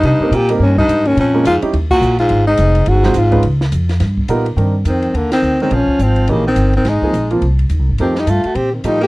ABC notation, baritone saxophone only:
X:1
M:4/4
L:1/8
Q:"Swing" 1/4=211
K:Gphr
V:1 name="Baritone saxophone" clef=bass
G,,2 B,, z E,, G,,2 E,, | F,,2 A,, z2 B,,2 A,,- | A,, A,,3 A,,2 A,,2 | z8 |
[K:Cm] z2 E,2 D, E,2 E, | F,2 F,2 _D, E,2 E, | A,3 z4 z | E, G, =A, A, C E, G, B, |]